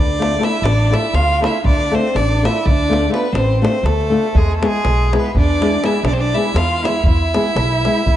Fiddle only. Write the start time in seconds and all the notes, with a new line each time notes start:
Already playing: D5
0.44 E5
0.63 D5
0.94 E5
1.14 F5
1.44 E5
1.66 D5
1.95 C5
2.16 D5
2.45 E5
2.66 D5
3.13 B4
3.33 C5
3.64 C5
3.85 A4
4.36 G#4
4.56 A4
4.66 G#4
5.17 B4
5.39 D5
5.85 E5
6.08 D5
6.13 C5
6.21 D5
6.34 E5
6.57 F5
6.85 E5
7.07 E5